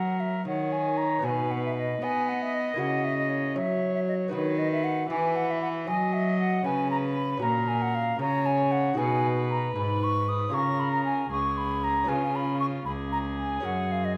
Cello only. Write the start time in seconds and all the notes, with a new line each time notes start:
Already playing: F#3
0.47 D#3
1.24 B2
2.02 B3
2.79 C#3
3.55 F#3
4.33 D#3
5.10 E3
5.88 F#3
6.64 C#3
7.42 A#2
8.19 C#3
8.98 B2
9.76 G#2
10.53 C#3
11.31 C#2
12.09 C#3
12.87 C#2
13.65 F#2